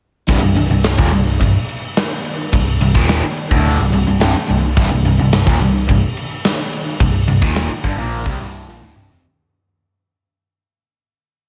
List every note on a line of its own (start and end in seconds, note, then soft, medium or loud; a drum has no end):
0.27 0.41 C1 loud
0.27 0.40 C2 loud
0.27 0.41 G2 loud
0.27 kick loud
0.27 crash medium
0.42 0.55 C1 medium
0.42 0.54 C2 medium
0.42 0.54 G2 medium
0.55 0.69 C1 medium
0.55 0.68 C2 medium
0.55 0.69 G2 medium
0.55 crash medium
0.70 0.96 C1 medium
0.70 0.93 C2 medium
0.70 0.93 G2 medium
0.84 snare loud
0.84 crash medium
0.98 1.12 D#1 medium
0.98 1.12 D#2 medium
0.98 1.12 A#2 medium
0.98 kick loud
1.12 1.39 C1 medium
1.12 1.35 C2 medium
1.12 1.35 G2 medium
1.12 crash medium
1.27 snare soft
1.40 1.54 C1 medium
1.40 1.54 C2 medium
1.40 1.54 G2 medium
1.40 kick medium
1.40 crash medium
1.69 crash medium
1.97 snare loud
1.97 crash medium
2.25 crash medium
2.52 2.79 C1 medium
2.52 2.75 C2 medium
2.52 2.75 G2 medium
2.52 kick loud
2.52 crash loud
2.81 2.94 C1 medium
2.81 2.94 C2 medium
2.81 2.94 G2 medium
2.81 crash medium
2.95 3.21 D#1 medium
2.95 3.22 D#2 loud
2.95 3.22 A#2 loud
2.95 3.23 D#3 loud
2.95 kick loud
3.09 snare loud
3.09 crash medium
3.23 muted overdriven electric guitar stroke medium
3.23 muted picked electric bass stroke soft
3.37 crash medium
3.51 3.77 D1 loud
3.51 3.78 D2 loud
3.51 3.79 A2 loud
3.51 3.79 D3 loud
3.51 kick loud
3.65 crash medium
3.79 3.92 C1 medium
3.79 3.91 C2 medium
3.79 3.91 G2 medium
3.79 snare soft
3.92 4.06 C1 medium
3.92 4.06 C2 medium
3.92 4.06 G2 medium
3.92 crash medium
4.07 4.20 C1 medium
4.07 4.18 C2 medium
4.07 4.19 G2 medium
4.19 4.34 C1 loud
4.19 4.33 C2 medium
4.19 4.34 G2 medium
4.19 snare loud
4.19 crash medium
4.35 muted overdriven electric guitar stroke medium
4.35 muted picked electric bass stroke soft
4.48 4.75 C1 medium
4.48 4.71 C2 medium
4.48 4.71 G2 medium
4.48 crash medium
4.76 4.90 C1 medium
4.76 4.88 C2 medium
4.76 4.90 G2 loud
4.76 kick loud
4.76 crash medium
4.90 5.04 C1 medium
4.90 5.04 C2 medium
4.90 5.05 G2 medium
5.05 5.18 C1 medium
5.05 5.18 C2 medium
5.05 5.18 G2 medium
5.05 crash medium
5.19 5.46 C1 medium
5.19 5.42 C2 medium
5.19 5.42 G2 medium
5.33 snare loud
5.33 crash medium
5.46 5.60 D#1 loud
5.46 5.60 D#2 medium
5.46 5.60 A#2 medium
5.46 kick loud
5.60 5.87 C1 medium
5.60 5.83 C2 medium
5.60 5.83 G2 medium
5.60 crash medium
5.88 6.02 C1 medium
5.88 6.02 C2 medium
5.88 6.02 G2 medium
5.88 kick medium
5.88 crash medium
6.17 crash medium
6.45 snare loud
6.45 crash medium
6.73 crash medium
7.00 7.26 C1 medium
7.00 7.23 C2 medium
7.00 7.23 G2 medium
7.00 kick loud
7.00 crash medium
7.28 7.41 C1 medium
7.28 7.41 C2 medium
7.28 7.42 G2 medium
7.28 crash medium
7.42 7.68 D#1 loud
7.42 7.69 D#2 medium
7.42 7.69 A#2 medium
7.42 7.69 D#3 loud
7.42 kick loud
7.56 snare loud
7.56 crash medium
7.70 muted picked electric bass stroke soft
7.70 muted overdriven electric guitar stroke medium
7.83 7.97 G1 medium
7.83 7.97 G2 medium
7.83 7.97 D3 loud
7.83 kick loud
7.83 crash medium
7.98 8.24 A#1 loud
7.98 8.25 A#2 loud
7.98 8.25 F3 medium
7.98 8.26 A#3 loud
8.12 crash medium
8.25 8.39 C2 medium
8.25 8.39 C3 medium
8.25 8.39 G3 loud
8.25 kick loud
8.39 8.66 C1 loud
8.39 8.67 C2 medium
8.39 8.67 G2 loud
8.39 8.67 C3 loud
8.39 crash medium
8.67 8.81 A#1 medium
8.67 8.80 A#2 medium
8.67 8.81 F3 medium
8.67 snare medium
8.81 8.94 D1 medium
8.81 8.95 D2 medium
8.81 8.95 A2 loud
8.81 high tom medium
8.95 9.08 C1 medium
8.95 9.09 C2 medium
8.95 9.09 G2 medium
8.95 mid tom loud
9.09 9.22 F1 loud
9.09 9.23 F2 medium
9.09 9.23 C3 loud
9.09 floor tom medium